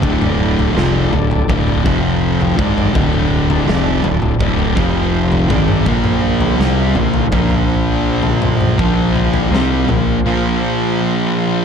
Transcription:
<<
  \new Staff \with { instrumentName = "Tonewheel organ" } { \time 4/4 \key bes \lydian \tempo 4 = 82 <d' a' d''>2~ <d' a' d''>8 <f' c'' g''>4 <d' d'' a''>8~ | <d' d'' a''>2~ <d' d'' a''>8 <f' c'' g''>4 <d' d'' a''>8 | <bes f' c''>1~ | <bes f' c''>1 | }
  \new Staff \with { instrumentName = "Distorted electric guitar" } { \clef bass \time 4/4 \key bes \lydian <d, a, d>4 <f, c f>8 <d, a,>8 <d, a, d>8 <f, c f>4 <gis, ees gis>8 | <d, a, d>4 <f, c f>8 <d, a,>8 <d, a, d>8 <f, c f>4 <gis, ees gis>8 | <bes, f bes>4 <c g c'>8 <bes, f>8 <bes, f bes>2 | <bes, f bes>4 <c g c'>8 <bes, f>8 <bes, f bes>2 | }
  \new Staff \with { instrumentName = "Distorted electric guitar" } { \clef bass \time 4/4 \key bes \lydian <d, a, d>4 <f, c f>8 <d, a,>8 <d, a, d>8 <f, c f>4 <gis, ees gis>8 | <d, a, d>4 <f, c f>8 <d, a,>8 <d, a, d>8 <f, c f>4 <gis, ees gis>8 | <bes, f bes>4 <c g c'>8 <bes, f>8 <bes, f bes>2 | <bes, f bes>4 <c g c'>8 <bes, f>8 <bes, f bes>2 | }
  \new Staff \with { instrumentName = "Fingered electric bass" } { \clef bass \time 4/4 \key bes \lydian d,,4 f,,8 d,,8 d,,8 f,,4 gis,,8 | d,,4 f,,8 d,,8 d,,8 f,,4 gis,,8 | bes,,4 c,8 bes,,8 bes,,2 | bes,,4 c,8 bes,,8 r2 | }
  \new DrumStaff \with { instrumentName = "Drums" } \drummode { \time 4/4 <bd tomfh>16 toml8 tomfh16 sn8 tomfh16 tomfh16 <bd tomfh toml>16 tomfh16 bd8 r16 tomfh16 <bd tomfh toml>16 toml16 | <bd tomfh>16 toml8 tomfh16 sn8 tomfh16 tomfh16 <bd tomfh toml>16 tomfh16 bd8 r16 tomfh16 <bd tomfh toml>16 toml16 | <bd tomfh>16 toml8 tomfh16 sn8 tomfh16 tomfh16 <bd tomfh toml>16 tomfh8. r16 tomfh16 <tomfh toml>16 toml16 | <bd tomfh>8 tomfh16 tomfh16 sn8 tomfh8 r4 r4 | }
>>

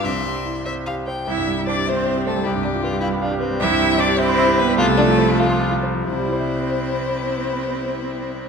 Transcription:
<<
  \new Staff \with { instrumentName = "Violin" } { \time 6/8 \key c \major \tempo 4. = 98 c'''4. r4. | e''4 d''8 c''4 a'8 | g'2~ g'8 r8 | e''4 d''8 c''4 b'8 |
a'2~ a'8 r8 | c''2.~ | c''2. | }
  \new Staff \with { instrumentName = "Grand piano" } { \time 6/8 \key c \major c,8 g8 e'8 c''8 g'8 c''8 | c,16 g,16 g16 e'16 c''16 g'16 e''16 c'''16 e''16 g'16 c''16 g16 | c,16 g,16 g16 f'16 b'16 g'16 f''16 b''16 f''16 g'16 b'16 g16 | c,16 g,16 g16 e'16 c''16 g'16 e''16 c'''16 e''16 g'16 c''16 g16 |
c,16 c16 f16 f'16 c''16 f'16 f''16 c'''16 f''16 f'16 c''16 f16 | <c, c g e' c'' e''>2.~ | <c, c g e' c'' e''>2. | }
  \new Staff \with { instrumentName = "Violin" } { \time 6/8 \key c \major e''4. e''8 f''8 g''8 | r4. c'4. | e'8 d'8 f'8 e'8 d'8 c'8~ | c'4. e'4. |
f'8 d'8 e'8 f'8. r8. | e'2.~ | e'2. | }
  \new Staff \with { instrumentName = "Cello" } { \time 6/8 \key c \major c'4. r4. | e'4 d'8 c'4 a8 | g2~ g8 r8 | e'4 d'8 c'4 b8 |
a2~ a8 r8 | c'2.~ | c'2. | }
>>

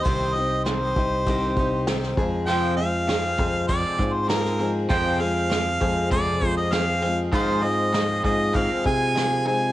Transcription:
<<
  \new Staff \with { instrumentName = "Harmonica" } { \time 4/4 \key f \minor \tempo 4 = 99 c''8 ees''8 c''2 r4 | g''8 f''4. d''8. c''16 bes'8. r16 | g''8 f''4. d''8. ees''16 f''8. r16 | c''8 ees''4 ees''8 f''8 aes''4 aes''8 | }
  \new Staff \with { instrumentName = "Clean electric guitar" } { \time 4/4 \key f \minor r1 | <f c' f'>8 <f c'>8 <f c'>8 <f c'>8 <f c'>8 <f c'>8 <f c'>8 <f c'>8 | <f c' f'>8 <f c'>8 <f c'>8 <f c'>8 <f c'>8 <f c'>8 <f c'>8 <f c'>8 | <aes ees' f'>8 <aes ees'>8 <aes ees'>8 <aes ees'>8 <aes ees'>8 <aes ees'>8 <aes ees'>8 <aes ees'>8 | }
  \new Staff \with { instrumentName = "Steel-string acoustic guitar" } { \time 4/4 \key f \minor <c ees c' ees' g'>8 <c' ees' g'>8 <ees c' ees' g'>8 <c' ees' g'>8 <c ees c' ees' g'>8 <c' ees' g'>8 <ees c' ees' g'>8 <f aes c' aes'>8 | <f, c f aes c' aes'>8 <f aes c' aes'>8 <f aes c' aes'>8 <f aes c' aes'>8 <f, c f aes c' aes'>8 <f aes c' aes'>8 <f aes c' aes'>8 <f aes c' aes'>8 | <f, c f aes c' aes'>8 <f aes c' aes'>8 <f aes c' aes'>8 <f aes c' aes'>8 <f, c f aes c' aes'>8 <f aes c' aes'>8 <f aes c' aes'>8 <f aes c' aes'>8 | <aes, ees f aes c' aes'>8 <f aes c' aes'>8 <f aes c' aes'>8 <f aes c' aes'>8 <aes, ees f aes c' aes'>8 <f aes c' aes'>8 <f aes c' aes'>8 <f aes c' aes'>8 | }
  \new Staff \with { instrumentName = "Picked electric bass" } { \clef bass \time 4/4 \key f \minor c,4. c,8 c,8 c,4 f,8~ | f,4. f,8 f,16 r16 aes,4. | f,4. f,8 f,8 f,4. | aes,4. aes,8 aes,16 r16 c4. | }
  \new DrumStaff \with { instrumentName = "Drums" } \drummode { \time 4/4 <hho bd>8 hho8 <hho sn>8 <hho bd>8 <hho bd>8 <hho bd>8 <hho sn>16 sn16 <hho bd>8 | hho8 hho8 <hho sn>8 <hho bd>8 <hho bd>8 bd8 <hho sn>16 sn16 hho8 | <hho bd>8 hho8 <hho sn>8 <hho bd>8 <hho bd>8 <hho bd>8 <hho sn>8 hho8 | <hho bd>8 hho8 <hho sn>8 <hho bd>8 <hho bd>8 <hho bd>8 <hho sn>8 hho8 | }
>>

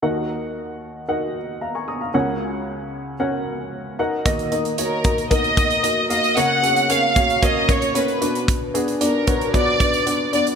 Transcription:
<<
  \new Staff \with { instrumentName = "Violin section" } { \time 4/4 \key dis \minor \tempo 4 = 114 r1 | r1 | r4 ais'4 dis''4. dis''8 | fis''4 eis''4 dis''8 cis''8 b'8. r16 |
r4 ais'4 d''4. d''8 | }
  \new Staff \with { instrumentName = "Upright piano" } { \time 4/4 \key dis \minor << { r2. <eis'' ais''>16 <gis'' cis'''>16 <ais'' dis'''>16 <eis'' ais''>16~ | <eis'' ais''>16 r2. r8. | r1 | r1 |
r1 | } \\ { <dis' fis' ais' fis''>2 <dis' fis' ais' fis''>2 | <cis' fis' ais' fis''>2 <cis' fis' ais' fis''>4. <dis' fis' ais' fis''>8 | <ais dis' fis' dis''>8 <ais dis' fis' dis''>8 <ais dis' fis' cis''>8 <ais dis' fis' dis''>8 <ais dis' fis' ais'>8 <ais dis' fis' dis''>8 <ais dis' fis' dis''>8 <ais dis' fis' eis''>8 | <ais cis' fis' cis''>8 <ais cis' fis' gis'>8 <ais cis' fis' cis''>8 <ais cis' fis' cis''>8 <ais cis' fis' cis''>8 <ais cis' fis' cis''>8 <ais cis' fis' cis''>8 <b d' fis' d''>8~ |
<b d' fis' d''>8 <b d' fis' gis'>8 <b d' fis' d''>8 <b d' fis' cis''>8 <b d' fis' d''>8 <b d' fis' d''>8 <b d' fis' d''>8 <b d' fis' d''>8 | } >> }
  \new Staff \with { instrumentName = "Upright piano" } { \clef bass \time 4/4 \key dis \minor <dis, dis>1 | <cis, cis>2.~ <cis, cis>8 r8 | dis4. r2 r8 | cis4. r2 b,8~ |
b,4 r2. | }
  \new DrumStaff \with { instrumentName = "Drums" } \drummode { \time 4/4 r4 r4 r4 r4 | r4 r4 r4 r4 | <hh bd>16 hh16 hh16 hh16 hh8 <hh bd>16 hh16 <hh bd>16 hh16 <hh bd>16 hh16 hh8 hh16 hh16 | hh8 hh16 hh16 hh8 <hh bd>16 hh16 <hh bd>8 <hh bd>16 hh16 hh16 hh16 hh16 hh16 |
<hh bd>8 hh16 hh16 hh8 <hh bd>16 hh16 <hh bd>8 <hh bd>16 hh16 hh8 hh16 hh16 | }
>>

